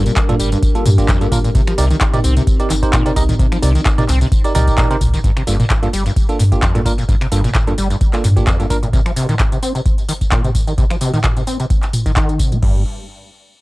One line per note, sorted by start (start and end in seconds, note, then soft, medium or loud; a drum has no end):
0.00 1.51 G3 medium
0.00 1.51 D4 medium
0.00 5.20 G4 medium
0.00 5.20 A#4 loud
0.06 0.12 A#2 loud
0.06 closed hi-hat soft
0.06 tambourine soft
0.16 finger snap medium
0.16 kick loud
0.16 clap loud
0.16 closed hi-hat medium
0.16 tambourine soft
0.29 0.35 G2 medium
0.29 0.34 A#3 medium
0.29 0.34 D4 medium
0.29 0.34 F4 medium
0.29 0.34 A4 loud
0.29 closed hi-hat soft
0.29 mid tom medium
0.29 tambourine soft
0.40 0.54 G1 loud
0.40 0.50 G3 medium
0.40 open hi-hat medium
0.40 tambourine medium
0.52 0.58 G2 medium
0.52 closed hi-hat soft
0.52 tambourine soft
0.63 kick loud
0.63 closed hi-hat medium
0.63 tambourine soft
0.75 0.84 A#3 medium
0.75 0.83 D4 medium
0.75 0.83 F4 medium
0.75 0.84 A4 medium
0.75 closed hi-hat soft
0.75 tambourine soft
0.86 1.00 G2 loud
0.86 0.90 A#2 loud
0.86 mid tom medium
0.86 open hi-hat loud
0.86 tambourine medium
0.98 1.06 A#3 medium
0.98 1.06 D4 medium
0.98 1.06 F4 medium
0.98 1.06 G4 medium
0.98 kick medium
0.98 closed hi-hat soft
0.98 tambourine soft
1.09 1.19 F2 medium
1.09 kick loud
1.09 clap loud
1.09 closed hi-hat medium
1.09 tambourine soft
1.21 1.27 G2 medium
1.21 1.26 A#3 medium
1.21 1.26 D4 medium
1.21 1.26 F4 medium
1.21 1.26 A4 medium
1.21 closed hi-hat soft
1.21 tambourine soft
1.32 1.47 G1 loud
1.32 1.38 A#3 medium
1.32 1.38 D4 medium
1.32 1.38 F4 medium
1.32 1.38 A#4 loud
1.32 kick medium
1.32 mid tom medium
1.32 open hi-hat medium
1.32 tambourine medium
1.44 1.50 A#2 medium
1.44 closed hi-hat soft
1.44 tambourine soft
1.55 1.62 C3 loud
1.55 5.20 C4 medium
1.55 5.20 D#4 loud
1.55 kick loud
1.55 closed hi-hat medium
1.55 tambourine soft
1.67 1.73 F3 medium
1.67 finger snap medium
1.67 closed hi-hat soft
1.67 tambourine soft
1.78 1.93 C2 loud
1.78 1.88 C3 loud
1.78 1.84 D#4 medium
1.78 1.84 G4 medium
1.78 1.84 A#4 medium
1.78 1.84 D5 medium
1.78 open hi-hat loud
1.78 tambourine medium
1.90 1.96 D#3 loud
1.90 closed hi-hat soft
1.90 tambourine soft
2.01 finger snap medium
2.01 kick loud
2.01 clap loud
2.01 closed hi-hat medium
2.01 tambourine soft
2.13 2.19 C3 medium
2.13 2.19 D#4 medium
2.13 2.19 G4 medium
2.13 2.19 A#4 medium
2.13 2.19 D5 loud
2.13 closed hi-hat soft
2.13 mid tom medium
2.13 tambourine soft
2.24 2.39 C2 loud
2.24 2.34 C4 medium
2.24 open hi-hat medium
2.24 tambourine medium
2.37 2.42 C3 medium
2.37 closed hi-hat soft
2.37 tambourine soft
2.47 kick loud
2.47 closed hi-hat medium
2.47 tambourine soft
2.60 2.68 D#4 medium
2.60 2.68 G4 medium
2.60 2.68 A#4 medium
2.60 2.68 D5 medium
2.60 closed hi-hat soft
2.60 tambourine soft
2.70 2.85 G1 loud
2.70 2.74 D#3 loud
2.70 clap soft
2.70 open hi-hat loud
2.70 tambourine medium
2.83 2.91 D#4 medium
2.83 2.91 G4 medium
2.83 2.91 A#4 medium
2.83 2.91 C5 loud
2.83 kick medium
2.83 closed hi-hat soft
2.83 tambourine soft
2.93 3.04 A#2 medium
2.93 finger snap medium
2.93 kick loud
2.93 clap loud
2.93 closed hi-hat medium
2.93 tambourine soft
3.06 3.12 C3 medium
3.06 3.11 D#4 medium
3.06 3.11 G4 medium
3.06 3.11 A#4 medium
3.06 3.11 D5 medium
3.06 closed hi-hat soft
3.06 tambourine soft
3.16 3.31 C2 loud
3.16 3.23 D#4 medium
3.16 3.23 G4 medium
3.16 3.23 A#4 medium
3.16 3.23 D#5 loud
3.16 kick medium
3.16 open hi-hat medium
3.16 tambourine medium
3.29 3.35 D#3 medium
3.29 closed hi-hat soft
3.29 mid tom medium
3.29 tambourine soft
3.39 3.46 C3 loud
3.39 kick loud
3.39 closed hi-hat medium
3.39 tambourine soft
3.52 3.58 F3 medium
3.52 finger snap medium
3.52 closed hi-hat soft
3.52 tambourine soft
3.62 3.77 C2 loud
3.62 3.73 C3 loud
3.62 3.69 D#4 medium
3.62 3.69 G4 medium
3.62 3.69 A#4 medium
3.62 3.69 D5 medium
3.62 open hi-hat loud
3.62 tambourine medium
3.75 3.81 D#3 loud
3.75 closed hi-hat soft
3.75 tambourine soft
3.86 finger snap medium
3.86 kick loud
3.86 clap loud
3.86 closed hi-hat medium
3.86 tambourine soft
3.98 4.04 C3 medium
3.98 4.03 D#4 medium
3.98 4.03 G4 medium
3.98 4.03 A#4 medium
3.98 4.03 D5 loud
3.98 closed hi-hat soft
3.98 mid tom medium
3.98 tambourine soft
4.09 4.24 C2 loud
4.09 4.19 C4 medium
4.09 clap soft
4.09 open hi-hat medium
4.09 tambourine medium
4.21 4.27 C3 medium
4.21 closed hi-hat soft
4.21 tambourine soft
4.32 kick loud
4.32 closed hi-hat medium
4.32 tambourine soft
4.44 4.53 D#4 medium
4.44 4.53 G4 medium
4.44 4.53 A#4 medium
4.44 4.53 D5 medium
4.44 closed hi-hat soft
4.44 tambourine soft
4.55 4.70 C2 loud
4.55 4.59 D#3 loud
4.55 4.87 D#4 loud
4.55 4.87 G4 medium
4.55 4.88 A#4 medium
4.55 4.87 D5 loud
4.55 mid tom medium
4.55 open hi-hat loud
4.55 tambourine medium
4.67 kick medium
4.67 closed hi-hat soft
4.67 tambourine soft
4.78 4.88 A#2 medium
4.78 kick loud
4.78 clap loud
4.78 closed hi-hat medium
4.78 tambourine soft
4.90 4.96 C3 medium
4.90 4.96 D#4 medium
4.90 4.96 G4 medium
4.90 4.96 A#4 medium
4.90 4.96 C5 loud
4.90 closed hi-hat soft
4.90 tambourine soft
5.01 5.16 C2 medium
5.01 kick medium
5.01 mid tom medium
5.01 open hi-hat medium
5.01 tambourine medium
5.14 5.19 D#3 medium
5.14 closed hi-hat soft
5.14 tambourine soft
5.24 5.31 G2 loud
5.24 kick loud
5.24 closed hi-hat medium
5.24 tambourine soft
5.37 5.42 C3 medium
5.37 finger snap medium
5.37 closed hi-hat soft
5.37 tambourine soft
5.47 5.62 G1 loud
5.47 5.57 G2 loud
5.47 5.53 A#3 medium
5.47 5.53 D4 medium
5.47 5.53 F4 medium
5.47 5.53 A4 medium
5.47 open hi-hat loud
5.47 tambourine medium
5.60 5.65 A#2 loud
5.60 closed hi-hat soft
5.60 mid tom medium
5.60 tambourine soft
5.70 finger snap medium
5.70 kick loud
5.70 clap loud
5.70 closed hi-hat medium
5.70 tambourine soft
5.83 5.89 G2 medium
5.83 5.88 A#3 medium
5.83 5.88 D4 medium
5.83 5.88 F4 medium
5.83 5.88 A4 medium
5.83 closed hi-hat soft
5.83 tambourine soft
5.93 6.08 G1 loud
5.93 6.04 G3 medium
5.93 open hi-hat medium
5.93 tambourine medium
6.06 6.12 G2 medium
6.06 closed hi-hat soft
6.06 tambourine soft
6.16 kick loud
6.16 closed hi-hat medium
6.16 tambourine soft
6.29 6.37 A#3 medium
6.29 6.37 D4 medium
6.29 6.37 F4 medium
6.29 6.37 A4 medium
6.29 closed hi-hat soft
6.29 tambourine soft
6.39 6.54 G2 loud
6.39 6.44 A#2 medium
6.39 open hi-hat loud
6.39 tambourine medium
6.52 6.60 A#3 medium
6.52 6.60 D4 medium
6.52 6.60 F4 medium
6.52 6.60 G4 medium
6.52 kick medium
6.52 closed hi-hat soft
6.52 tambourine soft
6.62 6.73 F2 medium
6.62 finger snap medium
6.62 kick loud
6.62 clap loud
6.62 closed hi-hat medium
6.62 tambourine soft
6.75 6.81 G2 medium
6.75 6.80 A#3 medium
6.75 6.80 D4 medium
6.75 6.80 F4 medium
6.75 6.80 A4 medium
6.75 closed hi-hat soft
6.75 mid tom medium
6.75 tambourine soft
6.86 7.00 G1 loud
6.86 6.92 A#3 medium
6.86 6.92 D4 medium
6.86 6.92 F4 medium
6.86 6.92 A#4 medium
6.86 kick medium
6.86 open hi-hat medium
6.86 tambourine medium
6.98 7.04 A#2 medium
6.98 closed hi-hat soft
6.98 tambourine soft
7.09 7.15 G2 loud
7.09 kick loud
7.09 closed hi-hat medium
7.09 tambourine soft
7.21 7.27 C3 medium
7.21 finger snap medium
7.21 closed hi-hat soft
7.21 tambourine soft
7.32 7.47 G1 loud
7.32 7.42 G2 loud
7.32 7.38 A#3 medium
7.32 7.38 D4 medium
7.32 7.38 F4 medium
7.32 7.38 A4 medium
7.32 open hi-hat loud
7.32 tambourine medium
7.44 7.50 A#2 loud
7.44 closed hi-hat soft
7.44 mid tom medium
7.44 tambourine soft
7.55 finger snap medium
7.55 kick loud
7.55 clap loud
7.55 closed hi-hat medium
7.55 mid tom medium
7.55 tambourine soft
7.67 7.73 G2 medium
7.67 7.73 A#3 medium
7.67 7.73 D4 medium
7.67 7.73 F4 medium
7.67 7.73 A4 medium
7.67 closed hi-hat soft
7.67 tambourine soft
7.78 7.93 G1 loud
7.78 7.88 G3 medium
7.78 open hi-hat loud
7.78 tambourine medium
7.90 7.96 G2 medium
7.90 closed hi-hat soft
7.90 tambourine soft
8.01 kick loud
8.01 closed hi-hat medium
8.01 tambourine soft
8.13 8.22 A#3 medium
8.13 8.22 D4 medium
8.13 8.22 F4 medium
8.13 8.22 A4 medium
8.13 clap soft
8.13 closed hi-hat soft
8.13 tambourine soft
8.24 8.39 G2 loud
8.24 8.28 A#2 loud
8.24 mid tom medium
8.24 open hi-hat loud
8.24 tambourine medium
8.37 8.45 A#3 medium
8.37 8.45 D4 medium
8.37 8.45 F4 medium
8.37 8.45 G4 medium
8.37 kick medium
8.37 closed hi-hat soft
8.37 tambourine soft
8.47 8.57 F2 medium
8.47 kick loud
8.47 clap loud
8.47 closed hi-hat medium
8.47 tambourine soft
8.60 8.65 G2 medium
8.60 8.65 A#3 medium
8.60 8.65 D4 medium
8.60 8.65 F4 medium
8.60 8.65 A4 medium
8.60 closed hi-hat soft
8.60 tambourine soft
8.70 8.85 G1 loud
8.70 8.76 A#3 medium
8.70 8.76 D4 medium
8.70 8.76 F4 medium
8.70 8.76 A#4 loud
8.70 kick medium
8.70 open hi-hat medium
8.70 tambourine medium
8.83 8.88 A#2 medium
8.83 closed hi-hat soft
8.83 mid tom medium
8.83 tambourine soft
8.93 9.00 C3 loud
8.93 kick loud
8.93 closed hi-hat medium
8.93 tambourine soft
9.06 9.12 F3 medium
9.06 finger snap medium
9.06 closed hi-hat soft
9.06 tambourine soft
9.16 9.27 C3 loud
9.16 open hi-hat loud
9.16 tambourine medium
9.29 9.35 D#3 loud
9.29 closed hi-hat soft
9.29 mid tom medium
9.29 tambourine soft
9.39 finger snap medium
9.39 kick loud
9.39 clap loud
9.39 closed hi-hat medium
9.39 tambourine soft
9.52 9.58 C3 medium
9.52 closed hi-hat soft
9.52 tambourine soft
9.63 9.73 C4 medium
9.63 open hi-hat medium
9.63 tambourine medium
9.75 9.81 C3 medium
9.75 closed hi-hat soft
9.75 tambourine soft
9.86 kick loud
9.86 closed hi-hat medium
9.86 tambourine soft
9.98 closed hi-hat soft
9.98 tambourine soft
10.09 10.13 D#3 loud
10.09 open hi-hat loud
10.09 tambourine medium
10.21 kick medium
10.21 closed hi-hat soft
10.21 tambourine soft
10.32 10.42 A#2 medium
10.32 finger snap medium
10.32 kick loud
10.32 clap loud
10.32 closed hi-hat medium
10.32 tambourine soft
10.44 10.50 C3 medium
10.44 closed hi-hat soft
10.44 mid tom medium
10.44 tambourine soft
10.55 kick medium
10.55 open hi-hat loud
10.55 tambourine medium
10.67 10.73 D#3 medium
10.67 closed hi-hat soft
10.67 tambourine soft
10.78 10.85 C3 loud
10.78 kick loud
10.78 closed hi-hat medium
10.78 tambourine soft
10.90 10.96 F3 medium
10.90 finger snap medium
10.90 closed hi-hat soft
10.90 tambourine soft
11.01 11.11 C3 loud
11.01 open hi-hat loud
11.01 tambourine medium
11.14 11.19 D#3 loud
11.14 closed hi-hat soft
11.14 mid tom medium
11.14 tambourine soft
11.24 finger snap medium
11.24 kick loud
11.24 clap loud
11.24 closed hi-hat medium
11.24 mid tom medium
11.24 tambourine soft
11.37 11.42 C3 medium
11.37 closed hi-hat soft
11.37 tambourine soft
11.47 11.58 C4 medium
11.47 open hi-hat medium
11.47 tambourine medium
11.60 11.65 C3 medium
11.60 closed hi-hat soft
11.60 tambourine soft
11.70 kick loud
11.70 closed hi-hat medium
11.70 tambourine soft
11.83 clap soft
11.83 closed hi-hat soft
11.83 tambourine soft
11.93 mid tom loud
11.93 open hi-hat loud
11.93 tambourine medium
12.06 12.12 D#3 loud
12.06 kick medium
12.06 closed hi-hat soft
12.06 tambourine soft
12.16 12.41 D#3 loud
12.16 kick loud
12.16 clap loud
12.16 closed hi-hat medium
12.16 tambourine soft
12.29 closed hi-hat soft
12.29 tambourine soft
12.39 12.53 C3 medium
12.39 kick medium
12.39 open hi-hat medium
12.39 tambourine medium
12.52 12.58 C4 loud
12.52 closed hi-hat soft
12.52 mid tom medium
12.52 tambourine soft
12.62 12.84 G1 medium
12.62 12.84 G2 loud
12.62 kick loud
12.62 crash medium